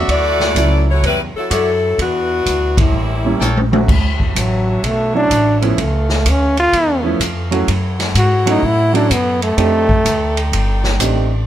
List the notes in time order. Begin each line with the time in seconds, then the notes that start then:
Already playing: F#4 D5 E5 C#6
0.08 D2 A3 E4 F#4 D5, kick, ride
0.40 snare
0.55 C#2 F#3 A3 C#4 E4, kick, hi-hat pedal, ride
0.90 A3 E4 F#4 C#5
1.03 E2 G3 C#4 E4 B4, kick, ride
1.34 F#3 C#4 E4 A4, muted upright bass stroke
1.50 F#2 F#3 C#4 E4 F#4 A4 C#5 D5 E5, kick, hi-hat pedal, ride
1.98 E2 E3 B3 D4 F#4, kick, ride
2.46 D2, kick, hi-hat pedal, ride
2.77 G3 A#3 C#4 E4, kick, ride
2.92 A1
3.24 G3 A#3 C#4 E4
3.40 A#1 A4 A#4 C#5 G5, hi-hat pedal, high tom
3.57 high tom
3.71 D2 F#3 A3 C#4 F#4, high tom
3.88 D2 D4 F#4 C#5 E5, kick, crash
4.20 kick
4.35 A1 F#3, kick, hi-hat pedal, ride
4.83 B1, kick, ride
4.87 A3
5.14 F#3 A3 C#4 D4 E4
5.30 A1, kick, hi-hat pedal, ride
5.61 F3 A3 B3 C#4 E4, ride
5.78 C#2 A3 C#4 A4 B4 F5, kick, ride
6.09 snare
6.25 D2, kick, hi-hat pedal, ride
6.29 C#4
6.57 F4, ride
6.73 E2, kick, ride
7.03 F3 A3 B3 C#4 E4
7.20 F2, kick, hi-hat pedal, ride
7.51 F#3 A3 C#4 E4 F#4, ride
7.68 F#2 E4 A4 C#5 F#5, kick, ride
7.99 snare, ride
8.15 G#2 F#4, kick, hi-hat pedal, ride
8.46 F#3 A3 C#4 E4 F#4, ride
8.50 D#4
8.63 A2 E4, kick
8.93 F#3 A3 C#4 D4 E4 F#4, ride
9.10 F#2 B3, kick, hi-hat pedal, ride
9.42 A3, ride
9.57 F2 A3 C4 D4 D#4 G4 D5 G5, kick, ride
9.89 kick
10.05 D2, kick, hi-hat pedal, ride
10.37 ride
10.52 G1, kick, ride
10.84 snare
11.00 A1 A3 C4 D4 D#4 G4, kick, hi-hat pedal, ride